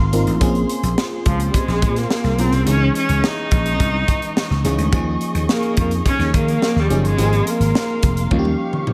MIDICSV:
0, 0, Header, 1, 6, 480
1, 0, Start_track
1, 0, Tempo, 564440
1, 348, Time_signature, 4, 2, 24, 8
1, 7596, End_track
2, 0, Start_track
2, 0, Title_t, "String section"
2, 0, Program_c, 0, 48
2, 0, Note_on_c, 0, 70, 64
2, 0, Note_on_c, 0, 77, 62
2, 0, Note_on_c, 0, 84, 75
2, 330, Note_off_c, 0, 70, 0
2, 330, Note_off_c, 0, 77, 0
2, 349, Note_on_c, 0, 68, 67
2, 350, Note_on_c, 0, 72, 64
2, 2237, Note_off_c, 0, 84, 0
2, 2251, Note_off_c, 0, 68, 0
2, 2251, Note_off_c, 0, 72, 0
2, 2273, Note_on_c, 0, 85, 76
2, 2275, Note_on_c, 0, 52, 65
2, 2275, Note_on_c, 0, 75, 60
2, 4174, Note_off_c, 0, 52, 0
2, 4190, Note_on_c, 0, 68, 65
2, 6078, Note_off_c, 0, 85, 0
2, 6079, Note_off_c, 0, 75, 0
2, 6091, Note_off_c, 0, 68, 0
2, 6106, Note_on_c, 0, 77, 68
2, 6110, Note_on_c, 0, 70, 67
2, 6111, Note_on_c, 0, 84, 69
2, 7060, Note_off_c, 0, 70, 0
2, 7060, Note_off_c, 0, 84, 0
2, 7068, Note_on_c, 0, 67, 71
2, 7070, Note_on_c, 0, 85, 74
2, 7596, Note_off_c, 0, 67, 0
2, 7596, Note_off_c, 0, 77, 0
2, 7596, Note_off_c, 0, 85, 0
2, 7596, End_track
3, 0, Start_track
3, 0, Title_t, "FM electric piano"
3, 0, Program_c, 1, 5
3, 0, Control_c, 1, 64, 127
3, 0, Note_on_c, 1, 58, 62
3, 0, Note_on_c, 1, 60, 59
3, 0, Note_on_c, 1, 63, 56
3, 0, Note_on_c, 1, 65, 60
3, 0, Note_on_c, 1, 68, 68
3, 106, Note_off_c, 1, 58, 0
3, 106, Note_on_c, 1, 58, 69
3, 108, Note_off_c, 1, 60, 0
3, 108, Note_on_c, 1, 60, 59
3, 113, Note_off_c, 1, 63, 0
3, 113, Note_off_c, 1, 65, 0
3, 113, Note_on_c, 1, 63, 58
3, 113, Note_on_c, 1, 65, 67
3, 115, Note_on_c, 1, 70, 77
3, 332, Note_off_c, 1, 58, 0
3, 333, Note_off_c, 1, 60, 0
3, 335, Note_off_c, 1, 63, 0
3, 335, Note_off_c, 1, 65, 0
3, 337, Note_off_c, 1, 70, 0
3, 346, Note_on_c, 1, 58, 77
3, 349, Note_on_c, 1, 60, 67
3, 350, Note_on_c, 1, 61, 64
3, 353, Note_on_c, 1, 65, 62
3, 355, Note_off_c, 1, 68, 0
3, 355, Note_on_c, 1, 68, 82
3, 359, Control_c, 1, 64, 0
3, 487, Control_c, 1, 64, 127
3, 1247, Note_off_c, 1, 58, 0
3, 1249, Note_off_c, 1, 60, 0
3, 1249, Note_off_c, 1, 61, 0
3, 1251, Note_off_c, 1, 65, 0
3, 1252, Note_off_c, 1, 68, 0
3, 2026, Note_on_c, 1, 58, 61
3, 2030, Note_on_c, 1, 60, 54
3, 2033, Note_on_c, 1, 61, 55
3, 2034, Note_on_c, 1, 65, 51
3, 2037, Note_on_c, 1, 70, 69
3, 2253, Note_off_c, 1, 58, 0
3, 2255, Note_off_c, 1, 60, 0
3, 2256, Note_off_c, 1, 61, 0
3, 2257, Note_off_c, 1, 65, 0
3, 2258, Note_off_c, 1, 70, 0
3, 2264, Note_on_c, 1, 52, 62
3, 2266, Note_on_c, 1, 56, 61
3, 2269, Note_on_c, 1, 61, 59
3, 2273, Note_on_c, 1, 63, 62
3, 2275, Note_on_c, 1, 68, 64
3, 2280, Control_c, 1, 64, 0
3, 2432, Control_c, 1, 64, 127
3, 3167, Note_off_c, 1, 52, 0
3, 3168, Note_off_c, 1, 56, 0
3, 3169, Note_off_c, 1, 61, 0
3, 3171, Note_off_c, 1, 63, 0
3, 3172, Note_off_c, 1, 68, 0
3, 3950, Note_on_c, 1, 52, 74
3, 3950, Note_on_c, 1, 56, 64
3, 3953, Note_on_c, 1, 61, 69
3, 3956, Note_on_c, 1, 63, 64
3, 3958, Note_on_c, 1, 68, 82
3, 4175, Note_off_c, 1, 52, 0
3, 4175, Note_off_c, 1, 56, 0
3, 4176, Note_off_c, 1, 61, 0
3, 4178, Note_off_c, 1, 63, 0
3, 4179, Note_off_c, 1, 68, 0
3, 4183, Note_on_c, 1, 53, 85
3, 4186, Note_on_c, 1, 58, 72
3, 4189, Note_on_c, 1, 61, 68
3, 4191, Note_on_c, 1, 63, 68
3, 4194, Note_on_c, 1, 68, 83
3, 4201, Control_c, 1, 64, 0
3, 4349, Control_c, 1, 64, 127
3, 5086, Note_off_c, 1, 53, 0
3, 5088, Note_off_c, 1, 58, 0
3, 5089, Note_off_c, 1, 61, 0
3, 5090, Note_off_c, 1, 63, 0
3, 5092, Note_off_c, 1, 68, 0
3, 5866, Note_on_c, 1, 53, 62
3, 5868, Note_on_c, 1, 58, 55
3, 5870, Note_on_c, 1, 61, 59
3, 5871, Note_on_c, 1, 63, 62
3, 5876, Note_on_c, 1, 68, 64
3, 6093, Note_off_c, 1, 53, 0
3, 6094, Note_off_c, 1, 58, 0
3, 6095, Note_off_c, 1, 61, 0
3, 6095, Note_off_c, 1, 63, 0
3, 6098, Note_off_c, 1, 68, 0
3, 6102, Note_on_c, 1, 53, 66
3, 6104, Note_on_c, 1, 58, 63
3, 6107, Note_on_c, 1, 60, 57
3, 6108, Note_on_c, 1, 63, 56
3, 6112, Note_on_c, 1, 67, 57
3, 6121, Control_c, 1, 64, 0
3, 6166, Note_on_c, 1, 68, 69
3, 6167, Note_off_c, 1, 67, 0
3, 6280, Control_c, 1, 64, 127
3, 7005, Note_off_c, 1, 53, 0
3, 7006, Note_off_c, 1, 58, 0
3, 7007, Note_off_c, 1, 60, 0
3, 7008, Note_off_c, 1, 63, 0
3, 7037, Note_off_c, 1, 68, 0
3, 7067, Note_on_c, 1, 53, 72
3, 7068, Note_on_c, 1, 58, 68
3, 7072, Note_on_c, 1, 61, 67
3, 7076, Note_on_c, 1, 63, 67
3, 7077, Note_on_c, 1, 65, 63
3, 7080, Control_c, 1, 64, 0
3, 7129, Note_off_c, 1, 65, 0
3, 7133, Note_on_c, 1, 67, 81
3, 7215, Control_c, 1, 64, 127
3, 7596, Note_off_c, 1, 53, 0
3, 7596, Note_off_c, 1, 58, 0
3, 7596, Note_off_c, 1, 61, 0
3, 7596, Note_off_c, 1, 63, 0
3, 7596, Note_off_c, 1, 67, 0
3, 7596, End_track
4, 0, Start_track
4, 0, Title_t, "Viola"
4, 0, Program_c, 2, 41
4, 1080, Note_on_c, 2, 53, 72
4, 1242, Note_off_c, 2, 53, 0
4, 1260, Note_on_c, 2, 55, 56
4, 1322, Note_on_c, 2, 56, 79
4, 1334, Note_off_c, 2, 55, 0
4, 1685, Note_on_c, 2, 58, 81
4, 1698, Note_off_c, 2, 56, 0
4, 2040, Note_on_c, 2, 60, 82
4, 2053, Note_off_c, 2, 58, 0
4, 2275, Note_off_c, 2, 60, 0
4, 2282, Note_on_c, 2, 61, 99
4, 2500, Note_off_c, 2, 61, 0
4, 2524, Note_on_c, 2, 61, 93
4, 2766, Note_on_c, 2, 63, 93
4, 2778, Note_off_c, 2, 61, 0
4, 3958, Note_off_c, 2, 63, 0
4, 4694, Note_on_c, 2, 58, 81
4, 4906, Note_off_c, 2, 58, 0
4, 4927, Note_on_c, 2, 58, 86
4, 5032, Note_off_c, 2, 58, 0
4, 5170, Note_on_c, 2, 61, 104
4, 5384, Note_off_c, 2, 61, 0
4, 5411, Note_on_c, 2, 58, 102
4, 5782, Note_on_c, 2, 55, 84
4, 5794, Note_off_c, 2, 58, 0
4, 6006, Note_off_c, 2, 55, 0
4, 6018, Note_on_c, 2, 56, 93
4, 6376, Note_on_c, 2, 58, 83
4, 6388, Note_off_c, 2, 56, 0
4, 7082, Note_off_c, 2, 58, 0
4, 7596, End_track
5, 0, Start_track
5, 0, Title_t, "Slap bass"
5, 0, Program_c, 3, 36
5, 104, Note_on_c, 3, 32, 72
5, 200, Note_off_c, 3, 32, 0
5, 228, Note_on_c, 3, 33, 84
5, 323, Note_off_c, 3, 33, 0
5, 348, Note_on_c, 3, 34, 78
5, 537, Note_off_c, 3, 34, 0
5, 705, Note_on_c, 3, 34, 80
5, 801, Note_off_c, 3, 34, 0
5, 1070, Note_on_c, 3, 37, 73
5, 1259, Note_off_c, 3, 37, 0
5, 1428, Note_on_c, 3, 34, 79
5, 1551, Note_on_c, 3, 46, 85
5, 1564, Note_off_c, 3, 34, 0
5, 1739, Note_off_c, 3, 46, 0
5, 1903, Note_on_c, 3, 36, 78
5, 2000, Note_off_c, 3, 36, 0
5, 2022, Note_on_c, 3, 35, 72
5, 2120, Note_off_c, 3, 35, 0
5, 2144, Note_on_c, 3, 36, 80
5, 2241, Note_off_c, 3, 36, 0
5, 2263, Note_on_c, 3, 37, 84
5, 2455, Note_off_c, 3, 37, 0
5, 2627, Note_on_c, 3, 37, 79
5, 2723, Note_off_c, 3, 37, 0
5, 2990, Note_on_c, 3, 34, 65
5, 3179, Note_off_c, 3, 34, 0
5, 3229, Note_on_c, 3, 36, 81
5, 3419, Note_off_c, 3, 36, 0
5, 3830, Note_on_c, 3, 37, 68
5, 3925, Note_off_c, 3, 37, 0
5, 3947, Note_on_c, 3, 37, 77
5, 4043, Note_off_c, 3, 37, 0
5, 4064, Note_on_c, 3, 38, 82
5, 4161, Note_off_c, 3, 38, 0
5, 4188, Note_on_c, 3, 39, 85
5, 4378, Note_off_c, 3, 39, 0
5, 4545, Note_on_c, 3, 39, 80
5, 4642, Note_off_c, 3, 39, 0
5, 4908, Note_on_c, 3, 41, 76
5, 5098, Note_off_c, 3, 41, 0
5, 5263, Note_on_c, 3, 39, 77
5, 5360, Note_off_c, 3, 39, 0
5, 5389, Note_on_c, 3, 51, 84
5, 5579, Note_off_c, 3, 51, 0
5, 5747, Note_on_c, 3, 39, 83
5, 5843, Note_off_c, 3, 39, 0
5, 5868, Note_on_c, 3, 30, 79
5, 5983, Note_off_c, 3, 30, 0
5, 5983, Note_on_c, 3, 31, 70
5, 6081, Note_off_c, 3, 31, 0
5, 6101, Note_on_c, 3, 32, 97
5, 6294, Note_off_c, 3, 32, 0
5, 6460, Note_on_c, 3, 32, 89
5, 6558, Note_off_c, 3, 32, 0
5, 6828, Note_on_c, 3, 29, 70
5, 7018, Note_off_c, 3, 29, 0
5, 7067, Note_on_c, 3, 39, 79
5, 7257, Note_off_c, 3, 39, 0
5, 7596, End_track
6, 0, Start_track
6, 0, Title_t, "Drums"
6, 110, Note_on_c, 9, 42, 64
6, 195, Note_off_c, 9, 42, 0
6, 230, Note_on_c, 9, 42, 48
6, 315, Note_off_c, 9, 42, 0
6, 348, Note_on_c, 9, 42, 86
6, 349, Note_on_c, 9, 36, 86
6, 433, Note_off_c, 9, 42, 0
6, 434, Note_off_c, 9, 36, 0
6, 468, Note_on_c, 9, 42, 32
6, 553, Note_off_c, 9, 42, 0
6, 591, Note_on_c, 9, 42, 61
6, 676, Note_off_c, 9, 42, 0
6, 710, Note_on_c, 9, 42, 53
6, 795, Note_off_c, 9, 42, 0
6, 833, Note_on_c, 9, 38, 106
6, 918, Note_off_c, 9, 38, 0
6, 1068, Note_on_c, 9, 42, 65
6, 1071, Note_on_c, 9, 36, 88
6, 1153, Note_off_c, 9, 42, 0
6, 1156, Note_off_c, 9, 36, 0
6, 1189, Note_on_c, 9, 42, 50
6, 1274, Note_off_c, 9, 42, 0
6, 1310, Note_on_c, 9, 36, 83
6, 1312, Note_on_c, 9, 42, 79
6, 1395, Note_off_c, 9, 36, 0
6, 1397, Note_off_c, 9, 42, 0
6, 1432, Note_on_c, 9, 42, 30
6, 1434, Note_on_c, 9, 38, 30
6, 1517, Note_off_c, 9, 42, 0
6, 1519, Note_off_c, 9, 38, 0
6, 1550, Note_on_c, 9, 42, 74
6, 1551, Note_on_c, 9, 36, 86
6, 1635, Note_off_c, 9, 42, 0
6, 1636, Note_off_c, 9, 36, 0
6, 1670, Note_on_c, 9, 42, 48
6, 1673, Note_on_c, 9, 38, 28
6, 1755, Note_off_c, 9, 42, 0
6, 1758, Note_off_c, 9, 38, 0
6, 1790, Note_on_c, 9, 38, 99
6, 1875, Note_off_c, 9, 38, 0
6, 1908, Note_on_c, 9, 42, 30
6, 1909, Note_on_c, 9, 38, 32
6, 1993, Note_off_c, 9, 42, 0
6, 1994, Note_off_c, 9, 38, 0
6, 2028, Note_on_c, 9, 42, 62
6, 2113, Note_off_c, 9, 42, 0
6, 2148, Note_on_c, 9, 42, 52
6, 2233, Note_off_c, 9, 42, 0
6, 2268, Note_on_c, 9, 42, 85
6, 2353, Note_off_c, 9, 42, 0
6, 2512, Note_on_c, 9, 42, 62
6, 2597, Note_off_c, 9, 42, 0
6, 2629, Note_on_c, 9, 42, 47
6, 2714, Note_off_c, 9, 42, 0
6, 2753, Note_on_c, 9, 38, 101
6, 2838, Note_off_c, 9, 38, 0
6, 2987, Note_on_c, 9, 42, 70
6, 2991, Note_on_c, 9, 36, 93
6, 3072, Note_off_c, 9, 42, 0
6, 3076, Note_off_c, 9, 36, 0
6, 3111, Note_on_c, 9, 42, 53
6, 3196, Note_off_c, 9, 42, 0
6, 3231, Note_on_c, 9, 36, 82
6, 3231, Note_on_c, 9, 42, 76
6, 3316, Note_off_c, 9, 36, 0
6, 3316, Note_off_c, 9, 42, 0
6, 3471, Note_on_c, 9, 42, 75
6, 3472, Note_on_c, 9, 36, 83
6, 3556, Note_off_c, 9, 42, 0
6, 3557, Note_off_c, 9, 36, 0
6, 3591, Note_on_c, 9, 42, 48
6, 3676, Note_off_c, 9, 42, 0
6, 3715, Note_on_c, 9, 38, 97
6, 3800, Note_off_c, 9, 38, 0
6, 3834, Note_on_c, 9, 38, 31
6, 3919, Note_off_c, 9, 38, 0
6, 3952, Note_on_c, 9, 42, 62
6, 4037, Note_off_c, 9, 42, 0
6, 4070, Note_on_c, 9, 42, 45
6, 4155, Note_off_c, 9, 42, 0
6, 4189, Note_on_c, 9, 36, 97
6, 4189, Note_on_c, 9, 42, 74
6, 4274, Note_off_c, 9, 36, 0
6, 4274, Note_off_c, 9, 42, 0
6, 4429, Note_on_c, 9, 42, 59
6, 4515, Note_off_c, 9, 42, 0
6, 4549, Note_on_c, 9, 42, 50
6, 4634, Note_off_c, 9, 42, 0
6, 4670, Note_on_c, 9, 38, 98
6, 4755, Note_off_c, 9, 38, 0
6, 4785, Note_on_c, 9, 42, 31
6, 4870, Note_off_c, 9, 42, 0
6, 4905, Note_on_c, 9, 42, 68
6, 4910, Note_on_c, 9, 36, 88
6, 4990, Note_off_c, 9, 42, 0
6, 4995, Note_off_c, 9, 36, 0
6, 5027, Note_on_c, 9, 42, 56
6, 5112, Note_off_c, 9, 42, 0
6, 5150, Note_on_c, 9, 36, 87
6, 5152, Note_on_c, 9, 42, 74
6, 5235, Note_off_c, 9, 36, 0
6, 5237, Note_off_c, 9, 42, 0
6, 5270, Note_on_c, 9, 42, 29
6, 5273, Note_on_c, 9, 38, 28
6, 5355, Note_off_c, 9, 42, 0
6, 5358, Note_off_c, 9, 38, 0
6, 5392, Note_on_c, 9, 36, 86
6, 5393, Note_on_c, 9, 42, 73
6, 5477, Note_off_c, 9, 36, 0
6, 5478, Note_off_c, 9, 42, 0
6, 5514, Note_on_c, 9, 42, 50
6, 5599, Note_off_c, 9, 42, 0
6, 5632, Note_on_c, 9, 38, 91
6, 5717, Note_off_c, 9, 38, 0
6, 5754, Note_on_c, 9, 38, 31
6, 5839, Note_off_c, 9, 38, 0
6, 5871, Note_on_c, 9, 42, 62
6, 5956, Note_off_c, 9, 42, 0
6, 5994, Note_on_c, 9, 42, 45
6, 6079, Note_off_c, 9, 42, 0
6, 6110, Note_on_c, 9, 42, 79
6, 6195, Note_off_c, 9, 42, 0
6, 6232, Note_on_c, 9, 42, 33
6, 6317, Note_off_c, 9, 42, 0
6, 6352, Note_on_c, 9, 42, 66
6, 6437, Note_off_c, 9, 42, 0
6, 6471, Note_on_c, 9, 42, 54
6, 6556, Note_off_c, 9, 42, 0
6, 6593, Note_on_c, 9, 38, 102
6, 6678, Note_off_c, 9, 38, 0
6, 6826, Note_on_c, 9, 42, 68
6, 6830, Note_on_c, 9, 36, 90
6, 6911, Note_off_c, 9, 42, 0
6, 6915, Note_off_c, 9, 36, 0
6, 6948, Note_on_c, 9, 42, 51
6, 7033, Note_off_c, 9, 42, 0
6, 7066, Note_on_c, 9, 48, 52
6, 7068, Note_on_c, 9, 36, 79
6, 7151, Note_off_c, 9, 48, 0
6, 7153, Note_off_c, 9, 36, 0
6, 7187, Note_on_c, 9, 48, 43
6, 7272, Note_off_c, 9, 48, 0
6, 7424, Note_on_c, 9, 47, 54
6, 7509, Note_off_c, 9, 47, 0
6, 7544, Note_on_c, 9, 45, 71
6, 7596, Note_off_c, 9, 45, 0
6, 7596, End_track
0, 0, End_of_file